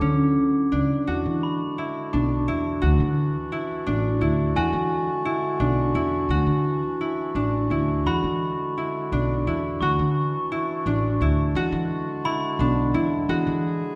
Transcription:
Already playing: D3 F#3 E4 F#4 A4 D6
0.01 D3 C#4
0.72 C#2 D4
1.06 E2 D3 G#3 D4 F#4
1.26 E3
1.43 B5
1.78 E4
2.13 B1 D4
2.48 E2 E4
2.82 D2 E3 F#4
3.00 D3
3.52 E4
3.86 A1 D4
4.21 D2 E4
4.56 E2 D3 G#3 F#4 G#5
4.73 E3
5.25 E4
5.60 B1 D4
5.94 E2 E4
6.29 D2 E3 F#4
6.47 D3
7.01 E4
7.35 A1 D4
7.70 D2 E4
8.06 E2 D3 G#3 F#4 B5
8.23 E3
8.78 E4
9.12 B1 D4
9.47 E2 E4
9.81 D2 E3 D4 F#4 C#6
9.99 D3
10.52 E4
10.86 A1 D4
11.21 D2 E4
11.55 E2 D3 G#3 F#4
11.72 E3
12.25 E4 B5
12.59 B1 D4
12.94 E2 E4
13.28 E2 F#4 G#4
13.47 E3

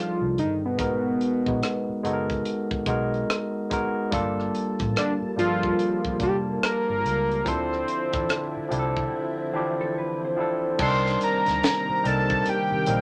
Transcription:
Already playing: G3 C4 D4 D#4 F4 G#4 A4
0.00 F4
0.21 C2
0.38 G1 D#4, closed hi-hat
0.65 B3
0.77 G#1 G#3 B3 D#4 F#4 A#4, kick, closed hi-hat
1.21 closed hi-hat
1.46 A#1 G#3 B3 D#4 F#4 B4, kick
1.63 cross-stick, closed hi-hat
1.89 muted fingered electric bass stroke
2.03 F#1 G#3 B3 D#4 F#4 A4, closed hi-hat
2.13 A#4
2.30 kick, closed hi-hat
2.45 closed hi-hat
2.71 kick
2.86 B1 G#3 B3 D#4 F#4 A#4, kick, closed hi-hat
3.14 closed hi-hat
3.30 cross-stick, closed hi-hat
3.70 G#3 B3 D#4 F#4 A#4, kick, closed hi-hat
4.11 G1 F3 G3 A#3 D4 F4 A4 A5, kick, closed hi-hat
4.40 cross-stick
4.55 closed hi-hat
4.79 A1, kick, cross-stick, closed hi-hat
4.96 D4, cross-stick, closed hi-hat
5.22 muted fingered electric bass stroke
5.36 G1 G3 A#3 D4 F4 G#4, closed hi-hat
5.46 A4
5.63 kick
5.79 closed hi-hat
6.05 muted fingered electric bass stroke, kick
6.19 F1 G3 A#3 D4 F4 G4 A5, kick, closed hi-hat
6.63 A#4, cross-stick, closed hi-hat
6.89 G1
7.05 C#2, closed hi-hat
7.31 closed hi-hat
7.44 D2 D3 F3 C4 D4 E4 A4 C5, kick, closed hi-hat
7.73 cross-stick
7.88 closed hi-hat
8.12 E2 F3 C4 D4 E4 A4, kick, cross-stick, closed hi-hat
8.29 cross-stick, closed hi-hat
8.57 muted fingered electric bass stroke
8.69 C2 F3 C4 D4 E4 G4, closed hi-hat
8.79 A4
8.97 kick
9.53 E3 C4 D4 E4 G4
9.59 F3
9.81 A4
9.98 B4
10.25 C5
10.36 F3 C4 D4 E4 A4
10.78 C2 C3 D#3 G3 A#3 C4 D4 D#4 A4, kick, crash
10.82 C6
10.88 A#4
11.06 snare
11.21 A#5, closed hi-hat
11.46 D2, snare, closed hi-hat
11.63 snare, closed hi-hat
11.89 muted fingered electric bass stroke
12.03 C2 G3 C4 D4 D#4 A#4 A5, closed hi-hat
12.30 kick
12.46 G5, closed hi-hat
12.71 muted fingered electric bass stroke
12.86 A#1 G3 A#3 C4 D#4 A#4, closed hi-hat

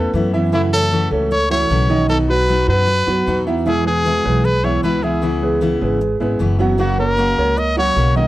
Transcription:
Already playing: E2 A3 B3 C#4 E4 A4 B4
0.13 F#2 E3 B3 C#4 E4
0.33 E3 B3 C#4 E4 E5
0.52 C#3 E3 A3 C#4 E4 F#4 E5
0.72 A3 A4 C#5
0.91 C#3 E3 A3 C#4 F#4
1.11 C#2 A3 A4 C#5
1.31 C#5, muted steel-string acoustic guitar stroke
1.50 E3 A3 C#4 E4 F#4 C#5 E5
1.69 B1 C#3 E3 A3 C#4 F#4
1.89 D#3 A3 C#4 D#4 F#4 D#5
2.08 B2 F#3 B3 D#4 F#4 A4
2.29 F#3 F#4 B4
2.48 B2 F#3 B3 D#4 F#4
2.68 F#2 F#3 F#4 B4
2.87 muted steel-string acoustic guitar stroke
3.07 F#2 F#3 B3 D#4 F#4 B4
3.27 E2 B2 F#3 B3 D#4 F#4
3.46 E3 B3 D#4 E4 F#4 E5
3.66 B2 E3 G#3 B3 E4 G#4 E5
3.86 G#3 G#4 B4
4.05 B2 E3 G#3 B3 E4
4.25 B1 G#3 G#4 B4
4.44 B4, muted steel-string acoustic guitar stroke
4.64 E3 G#3 B3 E4 C#5 E5
4.83 C#2 B2 E3 G#3 B3 E4 B4
5.02 E3 G#3 B3 E4 G#4 E5
5.22 C#3 E3 B3 C#4 E4
5.42 G#3 G#4 B4
5.61 C#3 E3 B3 C#4 E4
5.81 G#1 G#3 G#4 B4
6.01 muted steel-string acoustic guitar stroke
6.20 G#1 G#3 B3 C#4 E4 G#4 B4
6.39 F#1 C#3 E3 B3 C#4 E4
6.59 F#3 B3 C#4 E4 F#4 F#5
6.78 C#3 F#3 A#3 C#4 F#4 F#5
6.98 A#3 A#4 C#5
7.17 C#3 F#3 A#3 C#4 F#4
7.38 C#2 A#3 A#4 C#5
7.57 D#5, muted steel-string acoustic guitar stroke
7.76 F#3 A#3 C#4 F#4 C#5 F#5
7.96 B1 C#3 F#3 A#3 C#4 F#4
8.16 D#3 A#3 C#4 D#4 F#4 D#5

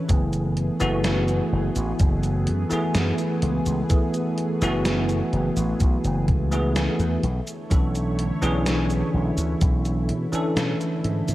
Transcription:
Already playing: E3 C#4 D4 A4
0.08 F#1 E3 A3 B3 G#4, kick, closed hi-hat, cabasa
0.33 closed hi-hat, cabasa
0.57 closed hi-hat
0.80 F#1 E3 A3 B3 F#4, closed hi-hat, cabasa
1.04 snare, closed hi-hat, cabasa
1.28 closed hi-hat, cabasa
1.52 F#1
1.76 A1, closed hi-hat, cabasa
2.00 F#1, kick, closed hi-hat, cabasa
2.23 closed hi-hat, cabasa
2.47 F#2, closed hi-hat
2.70 E3 A3 B3 G#4, muted slap bass stroke, closed hi-hat, cabasa
2.95 F#2, snare, closed hi-hat, cabasa
3.18 closed hi-hat, cabasa
3.42 C#2, closed hi-hat
3.66 C#2, closed hi-hat, cabasa
3.89 E3 A3 B3 G#4, kick, closed hi-hat, cabasa
4.14 closed hi-hat, cabasa
4.38 closed hi-hat
4.62 F#1 E3 A3 B3 F#4, snare, closed hi-hat, cabasa
4.85 snare, closed hi-hat, cabasa
5.09 closed hi-hat, cabasa
5.33 F#1, closed hi-hat
5.56 A1, closed hi-hat, cabasa
5.80 B1, kick, closed hi-hat, cabasa
6.04 F#1, closed hi-hat, cabasa
6.28 C#2, kick, closed hi-hat
6.51 E3 A3 B3 G#4, closed hi-hat, cabasa
6.76 snare, closed hi-hat, cabasa
6.99 E2, closed hi-hat, cabasa
7.23 B1 D3 A3 E4 C#5, closed hi-hat
7.47 closed hi-hat, cabasa
7.70 B1 E3 C#4 D4 A4, kick, closed hi-hat, cabasa
7.95 closed hi-hat, cabasa
8.19 closed hi-hat
8.42 B1 E3 C#4 D4 G#4, closed hi-hat, cabasa
8.66 snare, closed hi-hat, cabasa
8.90 closed hi-hat, cabasa
9.14 B1
9.37 D2, closed hi-hat, cabasa
9.61 B1, kick, closed hi-hat, cabasa
9.85 closed hi-hat, cabasa
10.09 B2, closed hi-hat
10.32 E3 C#4 D4 A4, muted slap bass stroke, closed hi-hat, cabasa
10.56 B2, snare, closed hi-hat, cabasa
10.81 closed hi-hat, cabasa
11.04 G#2 B3, closed hi-hat
11.28 G#2, closed hi-hat, cabasa

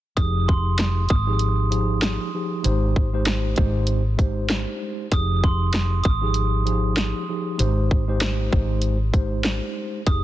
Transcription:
0.17 F1 F3 D#4 G4 G#4 D#6, kick, closed hi-hat
0.48 C6, kick
0.78 snare, closed hi-hat
1.09 G#1 D#6, kick, closed hi-hat
1.26 F3 D#4 G4 G#4
1.39 closed hi-hat
1.70 F3 D#4 G4 G#4, closed hi-hat
2.02 snare, closed hi-hat
2.34 F3 D#4 G4 G#4
2.63 G#1 G#3 D#4 G4 C5, closed hi-hat
2.96 kick
3.13 G#3 D#4 G4 C5
3.25 snare, closed hi-hat
3.56 G#1 G#3 D#4 G4 C5, kick, closed hi-hat
3.87 closed hi-hat
4.17 G#3 D#4 G4 C5, kick, closed hi-hat
4.50 snare, closed hi-hat
5.11 F1 F3 D#4 G4 G#4 D#6, kick, closed hi-hat
5.44 C6, kick
5.73 snare, closed hi-hat
6.04 G#1 D#6, kick, closed hi-hat
6.21 F3 D#4 G4 G#4
6.34 closed hi-hat
6.65 F3 D#4 G4 G#4, closed hi-hat
6.97 snare, closed hi-hat
7.29 F3 D#4 G4 G#4
7.58 G#1 G#3 D#4 G4 C5, closed hi-hat
7.91 kick
8.07 G#3 D#4 G4 C5
8.20 snare, closed hi-hat
8.51 G#1 G#3 D#4 G4 C5, kick
8.82 closed hi-hat
9.12 G#3 D#4 G4 C5, kick, closed hi-hat
9.44 snare, closed hi-hat
10.06 F1 F3 D#4 G4 G#4 D#6, kick, closed hi-hat

